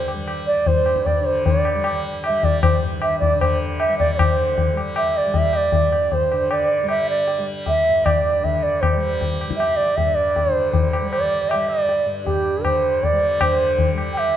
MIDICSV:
0, 0, Header, 1, 4, 480
1, 0, Start_track
1, 0, Tempo, 389864
1, 822, Time_signature, 3, 2, 24, 8
1, 8017, Tempo, 383142
1, 17860, End_track
2, 0, Start_track
2, 0, Title_t, "Bansuri"
2, 0, Program_c, 0, 73
2, 577, Note_on_c, 0, 74, 98
2, 830, Note_on_c, 0, 72, 94
2, 848, Note_off_c, 0, 74, 0
2, 1301, Note_on_c, 0, 74, 88
2, 1320, Note_off_c, 0, 72, 0
2, 1539, Note_on_c, 0, 72, 87
2, 1557, Note_off_c, 0, 74, 0
2, 1799, Note_on_c, 0, 74, 82
2, 1817, Note_off_c, 0, 72, 0
2, 2515, Note_off_c, 0, 74, 0
2, 2781, Note_on_c, 0, 76, 93
2, 3009, Note_on_c, 0, 74, 90
2, 3027, Note_off_c, 0, 76, 0
2, 3229, Note_off_c, 0, 74, 0
2, 3236, Note_on_c, 0, 72, 73
2, 3457, Note_off_c, 0, 72, 0
2, 3720, Note_on_c, 0, 76, 97
2, 3925, Note_off_c, 0, 76, 0
2, 3932, Note_on_c, 0, 74, 95
2, 4164, Note_off_c, 0, 74, 0
2, 4195, Note_on_c, 0, 72, 69
2, 4416, Note_off_c, 0, 72, 0
2, 4673, Note_on_c, 0, 76, 108
2, 4895, Note_off_c, 0, 76, 0
2, 4913, Note_on_c, 0, 74, 101
2, 5066, Note_off_c, 0, 74, 0
2, 5095, Note_on_c, 0, 74, 61
2, 5146, Note_on_c, 0, 72, 83
2, 5164, Note_off_c, 0, 74, 0
2, 5865, Note_off_c, 0, 72, 0
2, 6117, Note_on_c, 0, 76, 92
2, 6366, Note_on_c, 0, 74, 87
2, 6385, Note_off_c, 0, 76, 0
2, 6609, Note_on_c, 0, 76, 90
2, 6627, Note_off_c, 0, 74, 0
2, 6846, Note_on_c, 0, 74, 96
2, 6864, Note_off_c, 0, 76, 0
2, 7545, Note_on_c, 0, 72, 83
2, 7563, Note_off_c, 0, 74, 0
2, 8024, Note_on_c, 0, 74, 82
2, 8043, Note_off_c, 0, 72, 0
2, 8489, Note_off_c, 0, 74, 0
2, 8496, Note_on_c, 0, 76, 88
2, 8723, Note_off_c, 0, 76, 0
2, 8748, Note_on_c, 0, 74, 80
2, 9194, Note_off_c, 0, 74, 0
2, 9481, Note_on_c, 0, 76, 106
2, 9948, Note_on_c, 0, 74, 90
2, 9966, Note_off_c, 0, 76, 0
2, 10440, Note_on_c, 0, 76, 85
2, 10458, Note_off_c, 0, 74, 0
2, 10671, Note_on_c, 0, 74, 85
2, 10690, Note_off_c, 0, 76, 0
2, 10900, Note_on_c, 0, 72, 70
2, 10919, Note_off_c, 0, 74, 0
2, 11629, Note_off_c, 0, 72, 0
2, 11844, Note_on_c, 0, 76, 92
2, 12092, Note_on_c, 0, 74, 96
2, 12111, Note_off_c, 0, 76, 0
2, 12342, Note_on_c, 0, 76, 88
2, 12361, Note_off_c, 0, 74, 0
2, 12573, Note_on_c, 0, 74, 93
2, 12592, Note_off_c, 0, 76, 0
2, 13049, Note_off_c, 0, 74, 0
2, 13049, Note_on_c, 0, 72, 93
2, 13286, Note_off_c, 0, 72, 0
2, 13286, Note_on_c, 0, 72, 78
2, 13772, Note_off_c, 0, 72, 0
2, 13779, Note_on_c, 0, 74, 88
2, 14260, Note_on_c, 0, 76, 81
2, 14279, Note_off_c, 0, 74, 0
2, 14503, Note_on_c, 0, 74, 84
2, 14522, Note_off_c, 0, 76, 0
2, 14988, Note_off_c, 0, 74, 0
2, 15209, Note_on_c, 0, 67, 86
2, 15702, Note_on_c, 0, 72, 87
2, 15721, Note_off_c, 0, 67, 0
2, 16191, Note_on_c, 0, 74, 90
2, 16209, Note_off_c, 0, 72, 0
2, 16676, Note_on_c, 0, 72, 96
2, 16695, Note_off_c, 0, 74, 0
2, 17266, Note_off_c, 0, 72, 0
2, 17562, Note_on_c, 0, 79, 73
2, 17631, Note_on_c, 0, 76, 99
2, 17650, Note_off_c, 0, 79, 0
2, 17860, Note_off_c, 0, 76, 0
2, 17860, End_track
3, 0, Start_track
3, 0, Title_t, "Tanpura"
3, 0, Program_c, 1, 104
3, 0, Note_on_c, 1, 43, 54
3, 0, Note_on_c, 1, 50, 61
3, 0, Note_on_c, 1, 55, 62
3, 170, Note_off_c, 1, 55, 0
3, 170, Note_on_c, 1, 55, 55
3, 840, Note_off_c, 1, 43, 0
3, 845, Note_on_c, 1, 43, 62
3, 1479, Note_off_c, 1, 50, 0
3, 1483, Note_on_c, 1, 50, 58
3, 2147, Note_off_c, 1, 55, 0
3, 2147, Note_on_c, 1, 55, 64
3, 2814, Note_off_c, 1, 55, 0
3, 2814, Note_on_c, 1, 55, 58
3, 3467, Note_off_c, 1, 43, 0
3, 3472, Note_on_c, 1, 43, 64
3, 4118, Note_off_c, 1, 50, 0
3, 4123, Note_on_c, 1, 50, 65
3, 4775, Note_off_c, 1, 55, 0
3, 4775, Note_on_c, 1, 55, 52
3, 5160, Note_off_c, 1, 50, 0
3, 5160, Note_on_c, 1, 50, 55
3, 5827, Note_off_c, 1, 55, 0
3, 5827, Note_on_c, 1, 55, 48
3, 6471, Note_off_c, 1, 55, 0
3, 6471, Note_on_c, 1, 55, 62
3, 7122, Note_off_c, 1, 43, 0
3, 7127, Note_on_c, 1, 43, 50
3, 7784, Note_off_c, 1, 50, 0
3, 7784, Note_on_c, 1, 50, 58
3, 8413, Note_off_c, 1, 55, 0
3, 8413, Note_on_c, 1, 55, 64
3, 9110, Note_off_c, 1, 55, 0
3, 9110, Note_on_c, 1, 55, 55
3, 9737, Note_off_c, 1, 43, 0
3, 9742, Note_on_c, 1, 43, 56
3, 10396, Note_off_c, 1, 50, 0
3, 10401, Note_on_c, 1, 50, 50
3, 11070, Note_off_c, 1, 55, 0
3, 11070, Note_on_c, 1, 55, 62
3, 11713, Note_off_c, 1, 55, 0
3, 11713, Note_on_c, 1, 55, 54
3, 12349, Note_off_c, 1, 43, 0
3, 12354, Note_on_c, 1, 43, 64
3, 12998, Note_off_c, 1, 50, 0
3, 13003, Note_on_c, 1, 50, 49
3, 13660, Note_off_c, 1, 55, 0
3, 13660, Note_on_c, 1, 55, 62
3, 14309, Note_off_c, 1, 55, 0
3, 14309, Note_on_c, 1, 55, 51
3, 14958, Note_off_c, 1, 43, 0
3, 14963, Note_on_c, 1, 43, 61
3, 15622, Note_off_c, 1, 50, 0
3, 15627, Note_on_c, 1, 50, 54
3, 16292, Note_off_c, 1, 55, 0
3, 16292, Note_on_c, 1, 55, 54
3, 16654, Note_off_c, 1, 50, 0
3, 16654, Note_on_c, 1, 50, 70
3, 17322, Note_off_c, 1, 55, 0
3, 17322, Note_on_c, 1, 55, 61
3, 17860, Note_off_c, 1, 43, 0
3, 17860, Note_off_c, 1, 50, 0
3, 17860, Note_off_c, 1, 55, 0
3, 17860, End_track
4, 0, Start_track
4, 0, Title_t, "Tabla"
4, 100, Note_on_c, 9, 60, 53
4, 223, Note_off_c, 9, 60, 0
4, 339, Note_on_c, 9, 60, 77
4, 462, Note_off_c, 9, 60, 0
4, 817, Note_on_c, 9, 63, 82
4, 817, Note_on_c, 9, 64, 69
4, 940, Note_off_c, 9, 63, 0
4, 940, Note_off_c, 9, 64, 0
4, 1056, Note_on_c, 9, 60, 58
4, 1180, Note_off_c, 9, 60, 0
4, 1182, Note_on_c, 9, 37, 50
4, 1305, Note_off_c, 9, 37, 0
4, 1308, Note_on_c, 9, 63, 77
4, 1308, Note_on_c, 9, 64, 70
4, 1432, Note_off_c, 9, 63, 0
4, 1432, Note_off_c, 9, 64, 0
4, 1795, Note_on_c, 9, 63, 78
4, 1795, Note_on_c, 9, 64, 78
4, 1919, Note_off_c, 9, 63, 0
4, 1919, Note_off_c, 9, 64, 0
4, 2032, Note_on_c, 9, 60, 67
4, 2155, Note_off_c, 9, 60, 0
4, 2266, Note_on_c, 9, 60, 74
4, 2389, Note_off_c, 9, 60, 0
4, 2755, Note_on_c, 9, 60, 77
4, 2878, Note_off_c, 9, 60, 0
4, 2994, Note_on_c, 9, 63, 75
4, 2994, Note_on_c, 9, 64, 62
4, 3117, Note_off_c, 9, 63, 0
4, 3117, Note_off_c, 9, 64, 0
4, 3237, Note_on_c, 9, 60, 96
4, 3237, Note_on_c, 9, 64, 88
4, 3360, Note_off_c, 9, 60, 0
4, 3360, Note_off_c, 9, 64, 0
4, 3713, Note_on_c, 9, 60, 80
4, 3836, Note_off_c, 9, 60, 0
4, 3963, Note_on_c, 9, 63, 66
4, 3963, Note_on_c, 9, 64, 66
4, 4086, Note_off_c, 9, 63, 0
4, 4086, Note_off_c, 9, 64, 0
4, 4203, Note_on_c, 9, 60, 86
4, 4203, Note_on_c, 9, 64, 84
4, 4326, Note_off_c, 9, 60, 0
4, 4326, Note_off_c, 9, 64, 0
4, 4675, Note_on_c, 9, 60, 86
4, 4798, Note_off_c, 9, 60, 0
4, 4922, Note_on_c, 9, 63, 81
4, 4922, Note_on_c, 9, 64, 76
4, 5046, Note_off_c, 9, 63, 0
4, 5046, Note_off_c, 9, 64, 0
4, 5162, Note_on_c, 9, 60, 108
4, 5162, Note_on_c, 9, 64, 82
4, 5285, Note_off_c, 9, 60, 0
4, 5285, Note_off_c, 9, 64, 0
4, 5635, Note_on_c, 9, 63, 71
4, 5635, Note_on_c, 9, 64, 62
4, 5758, Note_off_c, 9, 63, 0
4, 5758, Note_off_c, 9, 64, 0
4, 5877, Note_on_c, 9, 60, 55
4, 6000, Note_off_c, 9, 60, 0
4, 6106, Note_on_c, 9, 60, 79
4, 6229, Note_off_c, 9, 60, 0
4, 6574, Note_on_c, 9, 63, 78
4, 6574, Note_on_c, 9, 64, 65
4, 6697, Note_off_c, 9, 63, 0
4, 6697, Note_off_c, 9, 64, 0
4, 6809, Note_on_c, 9, 60, 58
4, 6932, Note_off_c, 9, 60, 0
4, 7045, Note_on_c, 9, 63, 68
4, 7045, Note_on_c, 9, 64, 73
4, 7169, Note_off_c, 9, 63, 0
4, 7169, Note_off_c, 9, 64, 0
4, 7294, Note_on_c, 9, 60, 59
4, 7417, Note_off_c, 9, 60, 0
4, 7531, Note_on_c, 9, 63, 73
4, 7531, Note_on_c, 9, 64, 69
4, 7654, Note_off_c, 9, 63, 0
4, 7654, Note_off_c, 9, 64, 0
4, 7776, Note_on_c, 9, 60, 59
4, 7899, Note_off_c, 9, 60, 0
4, 8010, Note_on_c, 9, 60, 75
4, 8135, Note_off_c, 9, 60, 0
4, 8486, Note_on_c, 9, 60, 71
4, 8611, Note_off_c, 9, 60, 0
4, 8974, Note_on_c, 9, 63, 81
4, 9099, Note_off_c, 9, 63, 0
4, 9459, Note_on_c, 9, 63, 68
4, 9459, Note_on_c, 9, 64, 64
4, 9585, Note_off_c, 9, 63, 0
4, 9585, Note_off_c, 9, 64, 0
4, 9954, Note_on_c, 9, 60, 79
4, 9954, Note_on_c, 9, 64, 68
4, 10079, Note_off_c, 9, 60, 0
4, 10079, Note_off_c, 9, 64, 0
4, 10434, Note_on_c, 9, 63, 78
4, 10434, Note_on_c, 9, 64, 71
4, 10559, Note_off_c, 9, 63, 0
4, 10559, Note_off_c, 9, 64, 0
4, 10918, Note_on_c, 9, 60, 101
4, 10918, Note_on_c, 9, 64, 91
4, 11043, Note_off_c, 9, 60, 0
4, 11043, Note_off_c, 9, 64, 0
4, 11398, Note_on_c, 9, 63, 82
4, 11398, Note_on_c, 9, 64, 73
4, 11523, Note_off_c, 9, 63, 0
4, 11523, Note_off_c, 9, 64, 0
4, 11650, Note_on_c, 9, 60, 58
4, 11769, Note_on_c, 9, 37, 61
4, 11775, Note_off_c, 9, 60, 0
4, 11886, Note_on_c, 9, 60, 80
4, 11894, Note_off_c, 9, 37, 0
4, 12012, Note_off_c, 9, 60, 0
4, 12358, Note_on_c, 9, 63, 72
4, 12358, Note_on_c, 9, 64, 73
4, 12483, Note_off_c, 9, 63, 0
4, 12483, Note_off_c, 9, 64, 0
4, 12840, Note_on_c, 9, 63, 74
4, 12840, Note_on_c, 9, 64, 61
4, 12965, Note_off_c, 9, 63, 0
4, 12965, Note_off_c, 9, 64, 0
4, 13307, Note_on_c, 9, 63, 83
4, 13307, Note_on_c, 9, 64, 71
4, 13433, Note_off_c, 9, 63, 0
4, 13433, Note_off_c, 9, 64, 0
4, 13557, Note_on_c, 9, 60, 58
4, 13682, Note_off_c, 9, 60, 0
4, 13798, Note_on_c, 9, 60, 74
4, 13924, Note_off_c, 9, 60, 0
4, 14279, Note_on_c, 9, 60, 73
4, 14404, Note_off_c, 9, 60, 0
4, 14755, Note_on_c, 9, 63, 84
4, 14880, Note_off_c, 9, 63, 0
4, 15225, Note_on_c, 9, 63, 78
4, 15225, Note_on_c, 9, 64, 67
4, 15350, Note_off_c, 9, 63, 0
4, 15350, Note_off_c, 9, 64, 0
4, 15702, Note_on_c, 9, 60, 75
4, 15702, Note_on_c, 9, 64, 67
4, 15828, Note_off_c, 9, 60, 0
4, 15828, Note_off_c, 9, 64, 0
4, 16187, Note_on_c, 9, 63, 79
4, 16187, Note_on_c, 9, 64, 68
4, 16312, Note_off_c, 9, 63, 0
4, 16312, Note_off_c, 9, 64, 0
4, 16655, Note_on_c, 9, 60, 116
4, 16655, Note_on_c, 9, 64, 96
4, 16781, Note_off_c, 9, 60, 0
4, 16781, Note_off_c, 9, 64, 0
4, 17128, Note_on_c, 9, 63, 82
4, 17128, Note_on_c, 9, 64, 73
4, 17253, Note_off_c, 9, 63, 0
4, 17253, Note_off_c, 9, 64, 0
4, 17370, Note_on_c, 9, 60, 66
4, 17495, Note_off_c, 9, 60, 0
4, 17615, Note_on_c, 9, 60, 83
4, 17740, Note_off_c, 9, 60, 0
4, 17860, End_track
0, 0, End_of_file